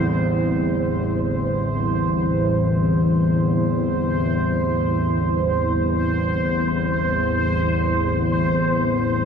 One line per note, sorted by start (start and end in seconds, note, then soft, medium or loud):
0.00 9.25 A2 medium
0.00 9.25 D3 medium
0.00 9.25 G3 medium
0.00 9.25 C4 medium
0.00 9.25 E4 medium
0.07 9.25 A1 medium
0.07 9.25 E2 medium
0.07 9.25 C5 medium